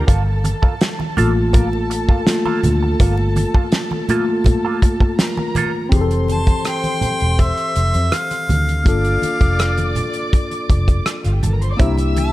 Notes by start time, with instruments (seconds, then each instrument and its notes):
0.08 fingered electric bass G1, clean electric guitar A#3 F4 A4, violin section A4 A5, kick, closed hi-hat, muted conga
0.27 muted clean electric guitar stroke
0.44 muted clean electric guitar stroke, closed hi-hat, high conga
0.62 clean electric guitar A#3 F4 A4, kick
0.81 snare, closed hi-hat
0.99 muted clean electric guitar stroke, muted conga, high conga
1.17 fingered electric bass A1, tine electric piano A3 A#3 F4, clean electric guitar A#3 F4 A4, closed hi-hat, low conga
1.35 muted clean electric guitar stroke
1.53 clean electric guitar A#3 F4 A#4, kick, closed hi-hat, low conga
1.73 muted conga
1.90 muted clean electric guitar stroke, closed hi-hat
2.09 clean electric guitar A#3 F4 A4, kick
2.27 tine electric piano A3 A#3 F4, muted clean electric guitar stroke, snare, closed hi-hat, muted conga
2.45 clean electric guitar A#3 F4 A4, high conga
2.63 fingered electric bass D2, closed hi-hat, high conga, low conga
2.83 muted clean electric guitar stroke
3.00 fingered electric bass G1, clean electric guitar A#3 F4 A4, kick, closed hi-hat, muted conga
3.17 muted conga
3.36 muted clean electric guitar stroke, closed hi-hat, high conga
3.54 clean electric guitar A#3 F4 A4, kick
3.72 snare, closed hi-hat
3.91 muted clean electric guitar stroke, high conga
4.09 tine electric piano A3 A#3 F4, clean electric guitar A#3 F4 A4, closed hi-hat, low conga
4.30 muted clean electric guitar stroke
4.44 muted clean electric guitar stroke, kick, closed hi-hat, muted conga, low conga
4.65 clean electric guitar A#3 F4 A4
4.82 muted clean electric guitar stroke, kick, closed hi-hat
5.00 muted clean electric guitar stroke, kick
5.19 violin section A#4 A#5, muted clean electric guitar stroke, snare, closed hi-hat, muted conga
5.37 muted clean electric guitar stroke, muted conga, high conga
5.55 clean electric guitar A#3 F4 A4, closed hi-hat, high conga, low conga
5.75 muted clean electric guitar stroke
5.89 fingered electric bass F1, tine electric piano E3 C4 G4, violin section C5 C6, kick, closed hi-hat
5.94 tine electric piano G#4
6.01 tine electric piano A4
6.11 closed hi-hat
6.28 harmonica A5, closed hi-hat, high conga
6.47 kick, closed hi-hat
6.65 harmonica G5, cross-stick, closed hi-hat, muted conga
6.84 closed hi-hat, muted conga, high conga
7.01 muted fingered electric bass stroke, closed hi-hat, low conga
7.20 fingered electric bass E1, closed hi-hat
7.39 harmonica E5, kick, closed hi-hat
7.58 closed hi-hat
7.76 fingered electric bass F1, closed hi-hat
7.94 fingered electric bass F2, closed hi-hat
8.12 harmonica F5, cross-stick, closed hi-hat, muted conga
8.31 cross-stick, closed hi-hat, muted conga
8.49 fingered electric bass D2, closed hi-hat, high conga, low conga
8.69 closed hi-hat
8.83 fingered electric bass G1, tine electric piano A#3 D4 F4, violin section D5 D6, kick, closed hi-hat, muted conga
8.88 tine electric piano A4, harmonica F5
9.05 closed hi-hat
9.22 muted fingered electric bass stroke, closed hi-hat, high conga
9.41 fingered electric bass F1, kick, closed hi-hat
9.59 cross-stick, closed hi-hat
9.78 closed hi-hat, muted conga, high conga
9.95 closed hi-hat, low conga
10.14 closed hi-hat
10.33 kick, closed hi-hat
10.51 closed hi-hat, muted conga
10.70 fingered electric bass F1, kick, closed hi-hat
10.88 kick, closed hi-hat
11.06 cross-stick, closed hi-hat
11.24 fingered electric bass G1, violin section F4 F5, cross-stick, closed hi-hat, muted conga
11.33 violin section G4 G5
11.42 fingered electric bass G1, violin section A4 A5, closed hi-hat, high conga, low conga
11.52 violin section A#4 A#5
11.62 violin section C5 C6, closed hi-hat
11.71 violin section D5 D6
11.77 fingered electric bass C2, tine electric piano A#3 D4 E4, clean electric guitar C4 E4, violin section E5 E6, kick, closed hi-hat, muted conga
11.81 tine electric piano G4, clean electric guitar A#4
11.98 muted clean electric guitar stroke, closed hi-hat, muted conga
12.16 harmonica A5, muted clean electric guitar stroke, closed hi-hat, high conga